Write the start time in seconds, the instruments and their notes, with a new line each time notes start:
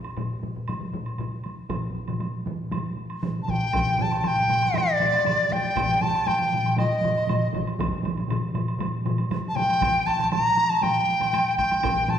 0.04 taiko high, high woodblock
0.17 taiko low-mid, taiko high, high woodblock
0.30 taiko high
0.43 taiko low-mid, taiko high
0.56 taiko low-mid, taiko high
0.68 taiko low-mid, taiko high, high woodblock
0.81 taiko low-mid, taiko high
0.94 taiko low-mid, taiko high
1.06 taiko high, high woodblock
1.18 taiko low-mid, taiko high, high woodblock
1.33 taiko high
1.44 taiko high, high woodblock
1.58 taiko high
1.69 taiko, taiko low-mid, taiko mid, taiko high, high woodblock
1.82 taiko high
1.95 taiko high
2.07 taiko low-mid, taiko mid, taiko high, high woodblock
2.20 taiko high, high woodblock
2.34 taiko high
2.46 taiko low-mid, taiko mid, taiko high
2.59 taiko high
2.71 taiko low-mid, taiko mid, taiko high, high woodblock
2.97 taiko high
3.10 taiko high, high woodblock
3.23 taiko low-mid, taiko mid, taiko high, high woodblock
3.36 taiko high
3.43 dizi A5
3.48 dizi G5, taiko, taiko low-mid, taiko mid, taiko high, high woodblock
3.73 taiko, taiko low-mid, taiko mid, taiko high, high woodblock
3.87 taiko low-mid, taiko mid
3.98 dizi A5, taiko low-mid, taiko mid, taiko high
4.11 taiko high, high woodblock
4.18 dizi A5
4.24 dizi G5, taiko low-mid, taiko mid, taiko high, high woodblock
4.37 taiko low-mid, taiko mid
4.49 taiko low-mid, taiko mid, taiko high, high woodblock
4.62 taiko low-mid, taiko mid, high woodblock
4.74 dizi D5, taiko low-mid, taiko mid, taiko high, high woodblock
5.00 taiko low-mid, taiko mid, taiko high, high woodblock
5.13 taiko high, high woodblock
5.25 taiko low-mid, taiko mid, taiko high, high woodblock
5.51 dizi G5, taiko low-mid, taiko mid, taiko high, high woodblock
5.64 taiko high
5.76 taiko, taiko low-mid, taiko mid, taiko high, high woodblock
5.89 taiko low-mid, taiko mid
6.01 dizi A5, taiko low-mid, taiko mid, taiko high, high woodblock
6.15 high woodblock
6.27 dizi G5, taiko low-mid, taiko mid, taiko high, high woodblock
6.39 taiko low-mid, taiko mid
6.52 taiko low-mid, taiko mid, taiko high
6.64 taiko low-mid, taiko mid, high woodblock
6.77 dizi D#5, taiko low-mid, taiko mid, taiko high, high woodblock
7.01 taiko low-mid, taiko mid, taiko high, high woodblock
7.18 high woodblock
7.27 taiko low-mid, taiko mid, taiko high, high woodblock
7.53 taiko, taiko low-mid, taiko mid, taiko high, high woodblock
7.67 taiko high, high woodblock
7.79 taiko, taiko low-mid, taiko mid, taiko high, high woodblock
7.90 taiko low-mid, taiko mid
8.03 taiko low-mid, taiko mid, taiko high, high woodblock
8.18 taiko high, high woodblock
8.28 taiko low-mid, taiko mid, taiko high, high woodblock
8.54 taiko low-mid, taiko mid, high woodblock
8.68 high woodblock
8.80 taiko low-mid, taiko mid, taiko high, high woodblock
9.05 taiko low-mid, taiko mid, taiko high, high woodblock
9.18 taiko high, high woodblock
9.31 taiko low-mid, taiko mid, taiko high, high woodblock
9.49 dizi A5
9.56 dizi G5, taiko low-mid, taiko mid, taiko high, high woodblock
9.69 taiko high, high woodblock
9.81 taiko, taiko low-mid, taiko mid, taiko high, high woodblock
10.06 dizi A5, taiko high, high woodblock
10.19 taiko low-mid, taiko mid, taiko high, high woodblock
10.31 dizi A#5, taiko low-mid, taiko mid, taiko high, high woodblock
10.57 taiko high, high woodblock
10.70 dizi A5, taiko high, high woodblock
10.81 dizi G5, taiko low-mid, taiko mid, taiko high, high woodblock
11.08 taiko high
11.20 taiko low-mid, taiko mid, taiko high, high woodblock
11.33 taiko high, high woodblock
11.58 dizi G5, taiko, taiko high, high woodblock
11.71 taiko high, high woodblock
11.83 taiko, taiko low-mid, taiko mid, taiko high, high woodblock
11.96 taiko low-mid, taiko mid
12.08 dizi A5, taiko low-mid, taiko mid, taiko high, high woodblock